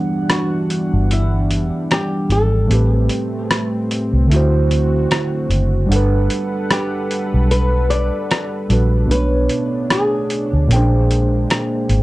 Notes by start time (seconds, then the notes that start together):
Already playing: E3 G3 B3 D4 F#5
0.30 F#4, cross-stick, closed hi-hat
0.70 closed hi-hat
0.93 G1
1.11 E4, closed hi-hat
1.51 closed hi-hat
1.91 G4, cross-stick, closed hi-hat
2.29 G#1 A4, closed hi-hat
2.66 A1 A2 A3 C4
2.70 C4 G4, closed hi-hat
2.75 B4
3.09 closed hi-hat
3.51 cross-stick, closed hi-hat
3.91 closed hi-hat
4.13 C2
4.27 D2 D3 A3 F#4
4.31 E4 F#4, closed hi-hat
4.36 C5
4.71 closed hi-hat
5.11 cross-stick, closed hi-hat
5.50 F#1, closed hi-hat
5.86 G1 G3 D4
5.91 G3 A4 B4 F#5, closed hi-hat
5.95 B4
6.30 closed hi-hat
6.71 G4, cross-stick, closed hi-hat
7.11 closed hi-hat
7.34 B1
7.51 B4, closed hi-hat
7.90 D5, closed hi-hat
8.31 cross-stick, closed hi-hat
8.69 A#1 G3 D4 F#4 A4, closed hi-hat
8.73 B4
9.06 B1 B2 A3 B3
9.10 A3 B3 D4 B4, closed hi-hat
9.15 C#5
9.49 closed hi-hat
9.90 G#4, cross-stick, closed hi-hat
10.30 closed hi-hat
10.53 D2
10.67 A#1 A#2 G#3 A#3 C#4, closed hi-hat
10.73 G#4 C5 G5
10.77 D4
11.11 closed hi-hat
11.19 F#4
11.50 cross-stick, closed hi-hat
11.89 G#1, closed hi-hat